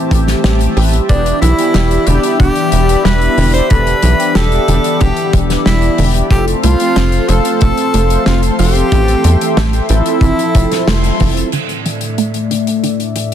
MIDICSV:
0, 0, Header, 1, 7, 480
1, 0, Start_track
1, 0, Tempo, 652174
1, 805, Time_signature, 4, 2, 24, 8
1, 9820, End_track
2, 0, Start_track
2, 0, Title_t, "Analog synth pad"
2, 0, Program_c, 0, 89
2, 0, Note_on_c, 0, 67, 82
2, 0, Note_on_c, 0, 72, 79
2, 0, Note_on_c, 0, 76, 80
2, 0, Note_on_c, 0, 81, 96
2, 776, Note_off_c, 0, 72, 0
2, 786, Note_off_c, 0, 81, 0
2, 804, Note_on_c, 0, 74, 77
2, 804, Note_on_c, 0, 83, 95
2, 4615, Note_off_c, 0, 74, 0
2, 4615, Note_off_c, 0, 83, 0
2, 4616, Note_off_c, 0, 67, 0
2, 4616, Note_off_c, 0, 76, 0
2, 4645, Note_on_c, 0, 72, 81
2, 4645, Note_on_c, 0, 77, 81
2, 4645, Note_on_c, 0, 84, 97
2, 4646, Note_on_c, 0, 69, 87
2, 6546, Note_off_c, 0, 72, 0
2, 6546, Note_off_c, 0, 77, 0
2, 6565, Note_on_c, 0, 76, 80
2, 6566, Note_on_c, 0, 79, 76
2, 7497, Note_off_c, 0, 84, 0
2, 7516, Note_off_c, 0, 79, 0
2, 7526, Note_on_c, 0, 84, 93
2, 8456, Note_off_c, 0, 69, 0
2, 8466, Note_off_c, 0, 76, 0
2, 8476, Note_off_c, 0, 84, 0
2, 8485, Note_on_c, 0, 45, 79
2, 8485, Note_on_c, 0, 57, 73
2, 8485, Note_on_c, 0, 74, 73
2, 8485, Note_on_c, 0, 76, 87
2, 9820, Note_off_c, 0, 45, 0
2, 9820, Note_off_c, 0, 57, 0
2, 9820, Note_off_c, 0, 74, 0
2, 9820, Note_off_c, 0, 76, 0
2, 9820, End_track
3, 0, Start_track
3, 0, Title_t, "Tenor saxophone"
3, 0, Program_c, 1, 66
3, 805, Note_on_c, 1, 62, 100
3, 1028, Note_off_c, 1, 62, 0
3, 1045, Note_on_c, 1, 64, 109
3, 1526, Note_on_c, 1, 67, 100
3, 1537, Note_off_c, 1, 64, 0
3, 1761, Note_off_c, 1, 67, 0
3, 1765, Note_on_c, 1, 67, 108
3, 2244, Note_on_c, 1, 71, 115
3, 2255, Note_off_c, 1, 67, 0
3, 2599, Note_off_c, 1, 71, 0
3, 2604, Note_on_c, 1, 72, 110
3, 2724, Note_on_c, 1, 71, 119
3, 2735, Note_off_c, 1, 72, 0
3, 3204, Note_on_c, 1, 69, 110
3, 3215, Note_off_c, 1, 71, 0
3, 3685, Note_on_c, 1, 67, 110
3, 3696, Note_off_c, 1, 69, 0
3, 3966, Note_off_c, 1, 67, 0
3, 4165, Note_on_c, 1, 64, 98
3, 4500, Note_off_c, 1, 64, 0
3, 4645, Note_on_c, 1, 67, 99
3, 4753, Note_off_c, 1, 67, 0
3, 4885, Note_on_c, 1, 65, 111
3, 5365, Note_on_c, 1, 69, 102
3, 5376, Note_off_c, 1, 65, 0
3, 5602, Note_off_c, 1, 69, 0
3, 5606, Note_on_c, 1, 69, 114
3, 6056, Note_off_c, 1, 69, 0
3, 6086, Note_on_c, 1, 65, 94
3, 6194, Note_off_c, 1, 65, 0
3, 6326, Note_on_c, 1, 67, 111
3, 7057, Note_off_c, 1, 67, 0
3, 7286, Note_on_c, 1, 64, 97
3, 8216, Note_off_c, 1, 64, 0
3, 9820, End_track
4, 0, Start_track
4, 0, Title_t, "Analog polysynth"
4, 0, Program_c, 2, 90
4, 0, Note_on_c, 2, 52, 98
4, 0, Note_on_c, 2, 57, 86
4, 0, Note_on_c, 2, 60, 90
4, 0, Note_on_c, 2, 67, 107
4, 301, Note_off_c, 2, 52, 0
4, 301, Note_off_c, 2, 57, 0
4, 301, Note_off_c, 2, 60, 0
4, 301, Note_off_c, 2, 67, 0
4, 325, Note_on_c, 2, 52, 87
4, 325, Note_on_c, 2, 57, 77
4, 325, Note_on_c, 2, 60, 77
4, 325, Note_on_c, 2, 67, 97
4, 536, Note_off_c, 2, 52, 0
4, 536, Note_off_c, 2, 57, 0
4, 536, Note_off_c, 2, 60, 0
4, 536, Note_off_c, 2, 67, 0
4, 565, Note_on_c, 2, 52, 77
4, 565, Note_on_c, 2, 57, 72
4, 565, Note_on_c, 2, 60, 71
4, 565, Note_on_c, 2, 71, 88
4, 706, Note_off_c, 2, 52, 0
4, 706, Note_off_c, 2, 57, 0
4, 706, Note_off_c, 2, 60, 0
4, 706, Note_off_c, 2, 71, 0
4, 805, Note_on_c, 2, 59, 81
4, 805, Note_on_c, 2, 62, 77
4, 805, Note_on_c, 2, 67, 96
4, 806, Note_on_c, 2, 52, 85
4, 1136, Note_off_c, 2, 59, 0
4, 1136, Note_off_c, 2, 67, 0
4, 1137, Note_off_c, 2, 52, 0
4, 1137, Note_off_c, 2, 62, 0
4, 1164, Note_on_c, 2, 52, 96
4, 1164, Note_on_c, 2, 62, 87
4, 1164, Note_on_c, 2, 67, 101
4, 1165, Note_on_c, 2, 59, 87
4, 1496, Note_off_c, 2, 52, 0
4, 1496, Note_off_c, 2, 59, 0
4, 1496, Note_off_c, 2, 62, 0
4, 1496, Note_off_c, 2, 67, 0
4, 1525, Note_on_c, 2, 52, 92
4, 1525, Note_on_c, 2, 59, 85
4, 1525, Note_on_c, 2, 62, 87
4, 1525, Note_on_c, 2, 67, 100
4, 2696, Note_off_c, 2, 52, 0
4, 2696, Note_off_c, 2, 59, 0
4, 2696, Note_off_c, 2, 62, 0
4, 2696, Note_off_c, 2, 67, 0
4, 2724, Note_on_c, 2, 59, 84
4, 2724, Note_on_c, 2, 62, 83
4, 2725, Note_on_c, 2, 52, 91
4, 2725, Note_on_c, 2, 69, 98
4, 3056, Note_off_c, 2, 52, 0
4, 3056, Note_off_c, 2, 59, 0
4, 3056, Note_off_c, 2, 62, 0
4, 3056, Note_off_c, 2, 69, 0
4, 3085, Note_on_c, 2, 52, 76
4, 3085, Note_on_c, 2, 59, 68
4, 3085, Note_on_c, 2, 62, 68
4, 3085, Note_on_c, 2, 67, 82
4, 3416, Note_off_c, 2, 52, 0
4, 3416, Note_off_c, 2, 59, 0
4, 3416, Note_off_c, 2, 62, 0
4, 3416, Note_off_c, 2, 67, 0
4, 3445, Note_on_c, 2, 52, 96
4, 3445, Note_on_c, 2, 62, 88
4, 3445, Note_on_c, 2, 67, 109
4, 3446, Note_on_c, 2, 59, 90
4, 4616, Note_off_c, 2, 52, 0
4, 4616, Note_off_c, 2, 62, 0
4, 4616, Note_off_c, 2, 67, 0
4, 4617, Note_off_c, 2, 59, 0
4, 4645, Note_on_c, 2, 53, 85
4, 4645, Note_on_c, 2, 57, 78
4, 4645, Note_on_c, 2, 60, 78
4, 4645, Note_on_c, 2, 69, 96
4, 4976, Note_off_c, 2, 53, 0
4, 4976, Note_off_c, 2, 57, 0
4, 4976, Note_off_c, 2, 60, 0
4, 4976, Note_off_c, 2, 69, 0
4, 5005, Note_on_c, 2, 53, 91
4, 5005, Note_on_c, 2, 57, 86
4, 5005, Note_on_c, 2, 60, 87
4, 5005, Note_on_c, 2, 69, 107
4, 5336, Note_off_c, 2, 57, 0
4, 5336, Note_off_c, 2, 60, 0
4, 5336, Note_off_c, 2, 69, 0
4, 5337, Note_off_c, 2, 53, 0
4, 5365, Note_on_c, 2, 53, 92
4, 5365, Note_on_c, 2, 57, 84
4, 5365, Note_on_c, 2, 60, 86
4, 5365, Note_on_c, 2, 69, 107
4, 6536, Note_off_c, 2, 53, 0
4, 6536, Note_off_c, 2, 57, 0
4, 6536, Note_off_c, 2, 60, 0
4, 6536, Note_off_c, 2, 69, 0
4, 6565, Note_on_c, 2, 52, 92
4, 6565, Note_on_c, 2, 57, 83
4, 6565, Note_on_c, 2, 60, 81
4, 6565, Note_on_c, 2, 69, 102
4, 6896, Note_off_c, 2, 52, 0
4, 6896, Note_off_c, 2, 69, 0
4, 6897, Note_off_c, 2, 57, 0
4, 6897, Note_off_c, 2, 60, 0
4, 6925, Note_on_c, 2, 52, 75
4, 6926, Note_on_c, 2, 57, 69
4, 6926, Note_on_c, 2, 60, 68
4, 6926, Note_on_c, 2, 67, 80
4, 7257, Note_off_c, 2, 52, 0
4, 7257, Note_off_c, 2, 57, 0
4, 7257, Note_off_c, 2, 60, 0
4, 7257, Note_off_c, 2, 67, 0
4, 7285, Note_on_c, 2, 53, 97
4, 7285, Note_on_c, 2, 60, 89
4, 7286, Note_on_c, 2, 64, 89
4, 7286, Note_on_c, 2, 69, 104
4, 8456, Note_off_c, 2, 53, 0
4, 8456, Note_off_c, 2, 60, 0
4, 8457, Note_off_c, 2, 64, 0
4, 8457, Note_off_c, 2, 69, 0
4, 9820, End_track
5, 0, Start_track
5, 0, Title_t, "Synth arpeggio sound"
5, 0, Program_c, 3, 84
5, 84, Note_on_c, 3, 69, 77
5, 312, Note_off_c, 3, 69, 0
5, 324, Note_on_c, 3, 55, 79
5, 495, Note_off_c, 3, 55, 0
5, 564, Note_on_c, 3, 67, 78
5, 793, Note_off_c, 3, 67, 0
5, 804, Note_on_c, 3, 50, 84
5, 1033, Note_off_c, 3, 50, 0
5, 1045, Note_on_c, 3, 52, 80
5, 1147, Note_off_c, 3, 52, 0
5, 1285, Note_on_c, 3, 55, 104
5, 1387, Note_off_c, 3, 55, 0
5, 1525, Note_on_c, 3, 50, 78
5, 1627, Note_off_c, 3, 50, 0
5, 1764, Note_on_c, 3, 50, 84
5, 1993, Note_off_c, 3, 50, 0
5, 2005, Note_on_c, 3, 52, 75
5, 2107, Note_off_c, 3, 52, 0
5, 2245, Note_on_c, 3, 55, 102
5, 2348, Note_off_c, 3, 55, 0
5, 2485, Note_on_c, 3, 50, 76
5, 2588, Note_off_c, 3, 50, 0
5, 2725, Note_on_c, 3, 50, 86
5, 2953, Note_off_c, 3, 50, 0
5, 2964, Note_on_c, 3, 52, 81
5, 3067, Note_off_c, 3, 52, 0
5, 3204, Note_on_c, 3, 55, 109
5, 3307, Note_off_c, 3, 55, 0
5, 3444, Note_on_c, 3, 50, 79
5, 3547, Note_off_c, 3, 50, 0
5, 3685, Note_on_c, 3, 50, 85
5, 3913, Note_off_c, 3, 50, 0
5, 3925, Note_on_c, 3, 52, 75
5, 4027, Note_off_c, 3, 52, 0
5, 4165, Note_on_c, 3, 55, 101
5, 4267, Note_off_c, 3, 55, 0
5, 4405, Note_on_c, 3, 50, 79
5, 4507, Note_off_c, 3, 50, 0
5, 4645, Note_on_c, 3, 53, 85
5, 4873, Note_off_c, 3, 53, 0
5, 4885, Note_on_c, 3, 57, 81
5, 4987, Note_off_c, 3, 57, 0
5, 5125, Note_on_c, 3, 60, 106
5, 5227, Note_off_c, 3, 60, 0
5, 5365, Note_on_c, 3, 53, 79
5, 5468, Note_off_c, 3, 53, 0
5, 5605, Note_on_c, 3, 53, 83
5, 5833, Note_off_c, 3, 53, 0
5, 5845, Note_on_c, 3, 57, 77
5, 5947, Note_off_c, 3, 57, 0
5, 6084, Note_on_c, 3, 60, 100
5, 6187, Note_off_c, 3, 60, 0
5, 6325, Note_on_c, 3, 53, 77
5, 6427, Note_off_c, 3, 53, 0
5, 6565, Note_on_c, 3, 52, 89
5, 6793, Note_off_c, 3, 52, 0
5, 6805, Note_on_c, 3, 55, 84
5, 6908, Note_off_c, 3, 55, 0
5, 7045, Note_on_c, 3, 57, 107
5, 7147, Note_off_c, 3, 57, 0
5, 7286, Note_on_c, 3, 52, 78
5, 7388, Note_off_c, 3, 52, 0
5, 7525, Note_on_c, 3, 52, 85
5, 7753, Note_off_c, 3, 52, 0
5, 7766, Note_on_c, 3, 53, 75
5, 7868, Note_off_c, 3, 53, 0
5, 8005, Note_on_c, 3, 57, 99
5, 8108, Note_off_c, 3, 57, 0
5, 8246, Note_on_c, 3, 52, 78
5, 8348, Note_off_c, 3, 52, 0
5, 8485, Note_on_c, 3, 50, 80
5, 8713, Note_off_c, 3, 50, 0
5, 8726, Note_on_c, 3, 52, 74
5, 8828, Note_off_c, 3, 52, 0
5, 8965, Note_on_c, 3, 57, 96
5, 9068, Note_off_c, 3, 57, 0
5, 9205, Note_on_c, 3, 50, 73
5, 9307, Note_off_c, 3, 50, 0
5, 9445, Note_on_c, 3, 50, 77
5, 9673, Note_off_c, 3, 50, 0
5, 9685, Note_on_c, 3, 52, 72
5, 9787, Note_off_c, 3, 52, 0
5, 9820, End_track
6, 0, Start_track
6, 0, Title_t, "Analog synth bass"
6, 0, Program_c, 4, 38
6, 83, Note_on_c, 4, 33, 92
6, 260, Note_off_c, 4, 33, 0
6, 326, Note_on_c, 4, 33, 88
6, 501, Note_off_c, 4, 33, 0
6, 565, Note_on_c, 4, 33, 91
6, 741, Note_off_c, 4, 33, 0
6, 805, Note_on_c, 4, 28, 103
6, 981, Note_off_c, 4, 28, 0
6, 1045, Note_on_c, 4, 35, 85
6, 1133, Note_off_c, 4, 35, 0
6, 1285, Note_on_c, 4, 28, 97
6, 1461, Note_off_c, 4, 28, 0
6, 1525, Note_on_c, 4, 28, 98
6, 1613, Note_off_c, 4, 28, 0
6, 1765, Note_on_c, 4, 28, 96
6, 1853, Note_off_c, 4, 28, 0
6, 2005, Note_on_c, 4, 28, 92
6, 2181, Note_off_c, 4, 28, 0
6, 2245, Note_on_c, 4, 28, 90
6, 2421, Note_off_c, 4, 28, 0
6, 2485, Note_on_c, 4, 28, 91
6, 2661, Note_off_c, 4, 28, 0
6, 2729, Note_on_c, 4, 28, 101
6, 2903, Note_off_c, 4, 28, 0
6, 2965, Note_on_c, 4, 35, 81
6, 3053, Note_off_c, 4, 35, 0
6, 3206, Note_on_c, 4, 28, 98
6, 3382, Note_off_c, 4, 28, 0
6, 3446, Note_on_c, 4, 28, 100
6, 3534, Note_off_c, 4, 28, 0
6, 3689, Note_on_c, 4, 28, 99
6, 3775, Note_off_c, 4, 28, 0
6, 3926, Note_on_c, 4, 28, 93
6, 4102, Note_off_c, 4, 28, 0
6, 4166, Note_on_c, 4, 28, 91
6, 4342, Note_off_c, 4, 28, 0
6, 4406, Note_on_c, 4, 28, 89
6, 4582, Note_off_c, 4, 28, 0
6, 4641, Note_on_c, 4, 29, 102
6, 4819, Note_off_c, 4, 29, 0
6, 4885, Note_on_c, 4, 36, 84
6, 4973, Note_off_c, 4, 36, 0
6, 5126, Note_on_c, 4, 29, 98
6, 5302, Note_off_c, 4, 29, 0
6, 5365, Note_on_c, 4, 29, 100
6, 5453, Note_off_c, 4, 29, 0
6, 5606, Note_on_c, 4, 29, 95
6, 5694, Note_off_c, 4, 29, 0
6, 5845, Note_on_c, 4, 29, 94
6, 6021, Note_off_c, 4, 29, 0
6, 6084, Note_on_c, 4, 29, 91
6, 6261, Note_off_c, 4, 29, 0
6, 6324, Note_on_c, 4, 29, 90
6, 6501, Note_off_c, 4, 29, 0
6, 6565, Note_on_c, 4, 33, 107
6, 6741, Note_off_c, 4, 33, 0
6, 6804, Note_on_c, 4, 40, 82
6, 6892, Note_off_c, 4, 40, 0
6, 7044, Note_on_c, 4, 33, 98
6, 7221, Note_off_c, 4, 33, 0
6, 7284, Note_on_c, 4, 33, 98
6, 7373, Note_off_c, 4, 33, 0
6, 7515, Note_on_c, 4, 29, 81
6, 7608, Note_off_c, 4, 29, 0
6, 7764, Note_on_c, 4, 29, 102
6, 7853, Note_off_c, 4, 29, 0
6, 8004, Note_on_c, 4, 29, 94
6, 8181, Note_off_c, 4, 29, 0
6, 8247, Note_on_c, 4, 29, 88
6, 8422, Note_off_c, 4, 29, 0
6, 9820, End_track
7, 0, Start_track
7, 0, Title_t, "Drums"
7, 82, Note_on_c, 9, 36, 122
7, 87, Note_on_c, 9, 42, 85
7, 156, Note_off_c, 9, 36, 0
7, 161, Note_off_c, 9, 42, 0
7, 203, Note_on_c, 9, 38, 41
7, 208, Note_on_c, 9, 42, 62
7, 276, Note_off_c, 9, 38, 0
7, 282, Note_off_c, 9, 42, 0
7, 324, Note_on_c, 9, 38, 126
7, 324, Note_on_c, 9, 42, 73
7, 398, Note_off_c, 9, 38, 0
7, 398, Note_off_c, 9, 42, 0
7, 446, Note_on_c, 9, 42, 44
7, 520, Note_off_c, 9, 42, 0
7, 566, Note_on_c, 9, 46, 89
7, 639, Note_off_c, 9, 46, 0
7, 687, Note_on_c, 9, 42, 62
7, 761, Note_off_c, 9, 42, 0
7, 805, Note_on_c, 9, 36, 118
7, 805, Note_on_c, 9, 42, 67
7, 878, Note_off_c, 9, 42, 0
7, 879, Note_off_c, 9, 36, 0
7, 927, Note_on_c, 9, 42, 45
7, 1001, Note_off_c, 9, 42, 0
7, 1049, Note_on_c, 9, 42, 95
7, 1123, Note_off_c, 9, 42, 0
7, 1167, Note_on_c, 9, 42, 69
7, 1240, Note_off_c, 9, 42, 0
7, 1282, Note_on_c, 9, 38, 126
7, 1282, Note_on_c, 9, 42, 61
7, 1356, Note_off_c, 9, 38, 0
7, 1356, Note_off_c, 9, 42, 0
7, 1405, Note_on_c, 9, 42, 49
7, 1478, Note_off_c, 9, 42, 0
7, 1521, Note_on_c, 9, 42, 91
7, 1595, Note_off_c, 9, 42, 0
7, 1645, Note_on_c, 9, 42, 65
7, 1719, Note_off_c, 9, 42, 0
7, 1764, Note_on_c, 9, 42, 61
7, 1765, Note_on_c, 9, 36, 118
7, 1838, Note_off_c, 9, 36, 0
7, 1838, Note_off_c, 9, 42, 0
7, 1880, Note_on_c, 9, 42, 41
7, 1954, Note_off_c, 9, 42, 0
7, 2002, Note_on_c, 9, 42, 98
7, 2076, Note_off_c, 9, 42, 0
7, 2128, Note_on_c, 9, 42, 64
7, 2202, Note_off_c, 9, 42, 0
7, 2245, Note_on_c, 9, 38, 112
7, 2247, Note_on_c, 9, 42, 71
7, 2319, Note_off_c, 9, 38, 0
7, 2320, Note_off_c, 9, 42, 0
7, 2366, Note_on_c, 9, 42, 42
7, 2440, Note_off_c, 9, 42, 0
7, 2485, Note_on_c, 9, 46, 80
7, 2559, Note_off_c, 9, 46, 0
7, 2608, Note_on_c, 9, 42, 69
7, 2682, Note_off_c, 9, 42, 0
7, 2724, Note_on_c, 9, 42, 68
7, 2729, Note_on_c, 9, 36, 110
7, 2798, Note_off_c, 9, 42, 0
7, 2802, Note_off_c, 9, 36, 0
7, 2846, Note_on_c, 9, 42, 42
7, 2920, Note_off_c, 9, 42, 0
7, 2963, Note_on_c, 9, 42, 102
7, 3036, Note_off_c, 9, 42, 0
7, 3090, Note_on_c, 9, 42, 66
7, 3163, Note_off_c, 9, 42, 0
7, 3203, Note_on_c, 9, 38, 106
7, 3203, Note_on_c, 9, 42, 65
7, 3276, Note_off_c, 9, 42, 0
7, 3277, Note_off_c, 9, 38, 0
7, 3325, Note_on_c, 9, 42, 45
7, 3399, Note_off_c, 9, 42, 0
7, 3446, Note_on_c, 9, 42, 103
7, 3520, Note_off_c, 9, 42, 0
7, 3564, Note_on_c, 9, 42, 60
7, 3638, Note_off_c, 9, 42, 0
7, 3684, Note_on_c, 9, 42, 63
7, 3689, Note_on_c, 9, 36, 107
7, 3758, Note_off_c, 9, 42, 0
7, 3763, Note_off_c, 9, 36, 0
7, 3802, Note_on_c, 9, 42, 45
7, 3876, Note_off_c, 9, 42, 0
7, 3926, Note_on_c, 9, 36, 109
7, 3926, Note_on_c, 9, 42, 89
7, 3999, Note_off_c, 9, 36, 0
7, 3999, Note_off_c, 9, 42, 0
7, 4048, Note_on_c, 9, 38, 38
7, 4049, Note_on_c, 9, 42, 67
7, 4122, Note_off_c, 9, 38, 0
7, 4123, Note_off_c, 9, 42, 0
7, 4164, Note_on_c, 9, 38, 123
7, 4168, Note_on_c, 9, 42, 70
7, 4238, Note_off_c, 9, 38, 0
7, 4242, Note_off_c, 9, 42, 0
7, 4283, Note_on_c, 9, 42, 43
7, 4356, Note_off_c, 9, 42, 0
7, 4403, Note_on_c, 9, 46, 94
7, 4477, Note_off_c, 9, 46, 0
7, 4519, Note_on_c, 9, 42, 70
7, 4593, Note_off_c, 9, 42, 0
7, 4641, Note_on_c, 9, 36, 123
7, 4646, Note_on_c, 9, 42, 72
7, 4714, Note_off_c, 9, 36, 0
7, 4720, Note_off_c, 9, 42, 0
7, 4767, Note_on_c, 9, 42, 45
7, 4840, Note_off_c, 9, 42, 0
7, 4883, Note_on_c, 9, 42, 103
7, 4957, Note_off_c, 9, 42, 0
7, 5003, Note_on_c, 9, 42, 65
7, 5077, Note_off_c, 9, 42, 0
7, 5124, Note_on_c, 9, 38, 110
7, 5124, Note_on_c, 9, 42, 69
7, 5197, Note_off_c, 9, 42, 0
7, 5198, Note_off_c, 9, 38, 0
7, 5241, Note_on_c, 9, 42, 44
7, 5315, Note_off_c, 9, 42, 0
7, 5362, Note_on_c, 9, 42, 95
7, 5436, Note_off_c, 9, 42, 0
7, 5483, Note_on_c, 9, 42, 67
7, 5556, Note_off_c, 9, 42, 0
7, 5599, Note_on_c, 9, 42, 62
7, 5606, Note_on_c, 9, 36, 126
7, 5672, Note_off_c, 9, 42, 0
7, 5680, Note_off_c, 9, 36, 0
7, 5723, Note_on_c, 9, 42, 50
7, 5796, Note_off_c, 9, 42, 0
7, 5843, Note_on_c, 9, 42, 101
7, 5917, Note_off_c, 9, 42, 0
7, 5964, Note_on_c, 9, 42, 62
7, 6037, Note_off_c, 9, 42, 0
7, 6080, Note_on_c, 9, 38, 108
7, 6081, Note_on_c, 9, 42, 70
7, 6154, Note_off_c, 9, 38, 0
7, 6154, Note_off_c, 9, 42, 0
7, 6203, Note_on_c, 9, 42, 47
7, 6276, Note_off_c, 9, 42, 0
7, 6321, Note_on_c, 9, 46, 102
7, 6395, Note_off_c, 9, 46, 0
7, 6443, Note_on_c, 9, 42, 75
7, 6516, Note_off_c, 9, 42, 0
7, 6564, Note_on_c, 9, 42, 72
7, 6565, Note_on_c, 9, 36, 106
7, 6638, Note_off_c, 9, 42, 0
7, 6639, Note_off_c, 9, 36, 0
7, 6684, Note_on_c, 9, 42, 50
7, 6758, Note_off_c, 9, 42, 0
7, 6802, Note_on_c, 9, 42, 95
7, 6876, Note_off_c, 9, 42, 0
7, 6928, Note_on_c, 9, 42, 67
7, 7002, Note_off_c, 9, 42, 0
7, 7045, Note_on_c, 9, 38, 123
7, 7045, Note_on_c, 9, 42, 75
7, 7118, Note_off_c, 9, 38, 0
7, 7118, Note_off_c, 9, 42, 0
7, 7162, Note_on_c, 9, 42, 43
7, 7236, Note_off_c, 9, 42, 0
7, 7279, Note_on_c, 9, 42, 96
7, 7352, Note_off_c, 9, 42, 0
7, 7402, Note_on_c, 9, 42, 62
7, 7476, Note_off_c, 9, 42, 0
7, 7514, Note_on_c, 9, 36, 111
7, 7524, Note_on_c, 9, 42, 63
7, 7588, Note_off_c, 9, 36, 0
7, 7597, Note_off_c, 9, 42, 0
7, 7647, Note_on_c, 9, 42, 52
7, 7720, Note_off_c, 9, 42, 0
7, 7763, Note_on_c, 9, 42, 98
7, 7764, Note_on_c, 9, 36, 117
7, 7836, Note_off_c, 9, 42, 0
7, 7838, Note_off_c, 9, 36, 0
7, 7887, Note_on_c, 9, 42, 66
7, 7889, Note_on_c, 9, 38, 37
7, 7960, Note_off_c, 9, 42, 0
7, 7962, Note_off_c, 9, 38, 0
7, 8004, Note_on_c, 9, 38, 117
7, 8008, Note_on_c, 9, 42, 70
7, 8078, Note_off_c, 9, 38, 0
7, 8081, Note_off_c, 9, 42, 0
7, 8124, Note_on_c, 9, 42, 45
7, 8198, Note_off_c, 9, 42, 0
7, 8243, Note_on_c, 9, 46, 96
7, 8248, Note_on_c, 9, 36, 62
7, 8317, Note_off_c, 9, 46, 0
7, 8321, Note_off_c, 9, 36, 0
7, 8369, Note_on_c, 9, 42, 77
7, 8443, Note_off_c, 9, 42, 0
7, 8480, Note_on_c, 9, 49, 72
7, 8485, Note_on_c, 9, 42, 59
7, 8553, Note_off_c, 9, 49, 0
7, 8559, Note_off_c, 9, 42, 0
7, 8604, Note_on_c, 9, 42, 45
7, 8678, Note_off_c, 9, 42, 0
7, 8727, Note_on_c, 9, 42, 86
7, 8800, Note_off_c, 9, 42, 0
7, 8838, Note_on_c, 9, 42, 61
7, 8912, Note_off_c, 9, 42, 0
7, 8965, Note_on_c, 9, 42, 61
7, 9038, Note_off_c, 9, 42, 0
7, 9083, Note_on_c, 9, 42, 45
7, 9156, Note_off_c, 9, 42, 0
7, 9208, Note_on_c, 9, 42, 83
7, 9281, Note_off_c, 9, 42, 0
7, 9327, Note_on_c, 9, 42, 59
7, 9400, Note_off_c, 9, 42, 0
7, 9448, Note_on_c, 9, 42, 65
7, 9521, Note_off_c, 9, 42, 0
7, 9567, Note_on_c, 9, 42, 41
7, 9641, Note_off_c, 9, 42, 0
7, 9683, Note_on_c, 9, 42, 85
7, 9757, Note_off_c, 9, 42, 0
7, 9820, End_track
0, 0, End_of_file